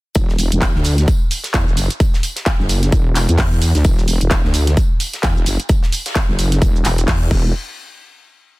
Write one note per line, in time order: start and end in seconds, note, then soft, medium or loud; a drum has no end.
0.15 0.50 E1 medium
0.15 kick loud
0.15 closed hi-hat medium
0.15 tambourine medium
0.15 shaker soft
0.29 snare soft
0.29 shaker soft
0.39 open hi-hat loud
0.39 tambourine medium
0.39 shaker medium
0.52 0.73 E1 medium
0.52 closed hi-hat medium
0.52 shaker soft
0.62 kick loud
0.62 snare loud
0.62 clap loud
0.62 closed hi-hat medium
0.62 tambourine medium
0.62 shaker soft
0.75 1.06 D2 loud
0.75 snare soft
0.84 open hi-hat loud
0.84 tambourine medium
0.84 shaker medium
0.98 snare soft
0.98 closed hi-hat medium
0.98 shaker soft
1.08 kick loud
1.08 closed hi-hat medium
1.08 tambourine medium
1.08 shaker soft
1.31 open hi-hat loud
1.31 tambourine medium
1.31 shaker medium
1.44 snare medium
1.44 closed hi-hat medium
1.44 shaker soft
1.54 1.65 E2 loud
1.54 kick loud
1.54 snare loud
1.54 clap loud
1.54 closed hi-hat medium
1.54 tambourine medium
1.54 shaker soft
1.67 1.75 E1 loud
1.67 shaker soft
1.77 1.88 F#1 loud
1.77 snare soft
1.77 open hi-hat loud
1.77 tambourine medium
1.77 shaker medium
1.90 closed hi-hat medium
1.90 shaker soft
2.00 kick loud
2.00 closed hi-hat medium
2.00 tambourine medium
2.00 shaker soft
2.14 snare medium
2.14 shaker soft
2.23 open hi-hat loud
2.23 tambourine medium
2.23 shaker medium
2.36 snare medium
2.36 closed hi-hat medium
2.36 shaker soft
2.46 kick loud
2.46 snare loud
2.46 clap loud
2.46 closed hi-hat medium
2.46 tambourine medium
2.46 shaker soft
2.59 2.91 F#1 loud
2.59 snare soft
2.69 open hi-hat loud
2.69 tambourine medium
2.69 shaker medium
2.82 snare soft
2.82 closed hi-hat medium
2.82 shaker soft
2.92 3.27 E1 loud
2.92 kick loud
2.92 closed hi-hat medium
2.92 tambourine medium
2.92 shaker soft
3.16 clap medium
3.16 open hi-hat loud
3.16 tambourine medium
3.16 shaker medium
3.29 3.73 E2 loud
3.29 closed hi-hat medium
3.29 shaker soft
3.38 kick loud
3.38 snare loud
3.38 clap loud
3.38 closed hi-hat medium
3.38 open hi-hat medium
3.38 shaker soft
3.53 shaker soft
3.62 open hi-hat loud
3.62 tambourine medium
3.62 shaker medium
3.75 3.83 D2 loud
3.75 snare soft
3.75 closed hi-hat medium
3.75 shaker soft
3.84 4.19 E1 loud
3.84 kick loud
3.84 closed hi-hat medium
3.84 tambourine medium
3.84 shaker soft
3.97 snare soft
3.97 shaker soft
4.08 open hi-hat loud
4.08 tambourine medium
4.08 shaker medium
4.21 4.42 E1 medium
4.21 closed hi-hat medium
4.21 shaker soft
4.31 kick loud
4.31 snare loud
4.31 clap loud
4.31 closed hi-hat medium
4.31 tambourine loud
4.31 shaker soft
4.44 4.75 D2 loud
4.44 snare medium
4.54 open hi-hat loud
4.54 tambourine medium
4.54 shaker medium
4.67 snare soft
4.67 closed hi-hat medium
4.67 shaker soft
4.77 kick loud
4.77 closed hi-hat medium
4.77 tambourine medium
4.77 shaker soft
5.00 open hi-hat loud
5.00 tambourine medium
5.00 shaker medium
5.13 snare soft
5.13 closed hi-hat medium
5.13 shaker soft
5.23 5.34 E2 loud
5.23 kick loud
5.23 snare loud
5.23 clap loud
5.23 closed hi-hat medium
5.23 tambourine medium
5.23 shaker soft
5.37 5.45 E1 medium
5.37 shaker soft
5.46 5.58 F#1 medium
5.46 snare soft
5.46 open hi-hat loud
5.46 tambourine medium
5.46 shaker medium
5.60 closed hi-hat medium
5.60 shaker soft
5.69 kick loud
5.69 closed hi-hat medium
5.69 tambourine medium
5.69 shaker soft
5.83 snare medium
5.83 shaker soft
5.92 open hi-hat loud
5.92 tambourine medium
5.92 shaker medium
6.06 snare medium
6.06 closed hi-hat medium
6.06 shaker soft
6.15 kick loud
6.15 snare loud
6.15 clap loud
6.15 closed hi-hat medium
6.15 tambourine medium
6.15 shaker soft
6.29 6.60 F#1 loud
6.29 snare soft
6.39 open hi-hat loud
6.39 tambourine medium
6.39 shaker medium
6.52 snare soft
6.52 closed hi-hat medium
6.52 shaker soft
6.62 6.83 E1 medium
6.62 kick loud
6.62 closed hi-hat soft
6.62 tambourine medium
6.62 shaker soft
6.76 shaker soft
6.85 7.06 E1 loud
6.85 clap medium
6.85 open hi-hat loud
6.85 tambourine medium
6.85 shaker medium
6.98 closed hi-hat medium
6.98 shaker soft
7.08 7.30 E2 loud
7.08 kick loud
7.08 snare loud
7.08 clap loud
7.08 closed hi-hat soft
7.08 open hi-hat medium
7.08 shaker soft
7.22 shaker soft
7.31 7.52 E1 medium
7.31 kick loud
7.31 crash medium